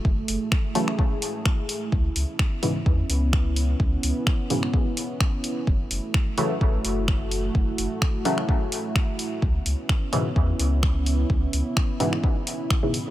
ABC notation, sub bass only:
X:1
M:4/4
L:1/8
Q:"Swing 16ths" 1/4=128
K:F#m
V:1 name="Sub bass" clef=bass
F,,, F,,, z6 | C,, C,, z2 E,, C,,3 | C,, C,, z6 | F,,, F,,, z2 A,,, F,,,3 |
F,,, F,,, z6 | C,, C,, z2 E,, C,,3 | C,, C,, z6 |]